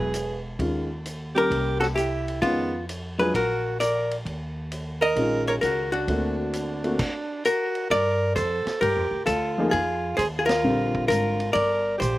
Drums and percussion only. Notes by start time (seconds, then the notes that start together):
0.14 hi-hat pedal, ride
0.59 kick, ride
1.05 hi-hat pedal, ride
1.36 ride
1.51 kick, ride
1.82 snare
1.97 hi-hat pedal, ride
2.28 ride
2.43 kick, ride
2.89 hi-hat pedal, ride
3.19 ride
3.34 kick, ride
3.81 hi-hat pedal, ride
4.11 ride
4.26 kick, ride
4.72 hi-hat pedal, ride
5.02 ride
5.16 kick, ride
5.47 ride
5.63 hi-hat pedal, ride
5.93 ride
6.08 kick, ride
6.53 hi-hat pedal, ride
6.84 ride
6.99 kick, crash, ride
7.45 hi-hat pedal, ride
7.75 ride
7.91 kick, ride
8.36 kick, hi-hat pedal, ride
8.67 snare, ride
8.82 kick, ride
9.27 kick, hi-hat pedal, ride
9.73 kick, ride
10.19 kick, hi-hat pedal, ride
10.49 snare, ride
10.95 kick
11.10 kick, hi-hat pedal, ride
11.40 ride
11.55 kick, ride
12.01 kick, hi-hat pedal, ride